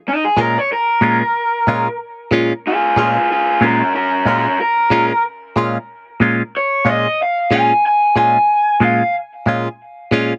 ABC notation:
X:1
M:4/4
L:1/16
Q:1/4=92
K:Bbm
V:1 name="Overdriven electric guitar"
E A B d B8 z4 | [FA]2 [FA]2 [FA]2 [DB]2 [DB]2 [DB]2 B4 | z8 d2 e2 f2 a2 | a2 a4 f2 z8 |]
V:2 name="Clean electric guitar"
z2 [B,,A,DF]2 z2 [B,,A,DF]2 z2 [B,,A,DF]2 z2 [B,,A,DF]2 | z2 [B,,A,DF]2 z2 [B,,A,DF]2 z2 [B,,A,DF]2 z2 [B,,A,DF]2 | z2 [B,,A,DF]2 z2 [B,,A,DF]2 z2 [B,,A,DF]2 z2 [B,,A,DF]2 | z2 [B,,A,DF]2 z2 [B,,A,DF]2 z2 [B,,A,DF]2 z2 [B,,A,DF]2 |]